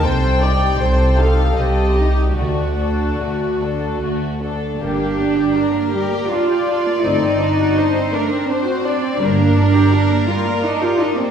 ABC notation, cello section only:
X:1
M:3/4
L:1/16
Q:1/4=81
K:Gm
V:1 name="Cello section"
C,,4 C,,4 C,,4 | D,,4 D,,4 D,,4 | D6 G2 F4 | E6 D2 C4 |
D6 F2 E F E C |]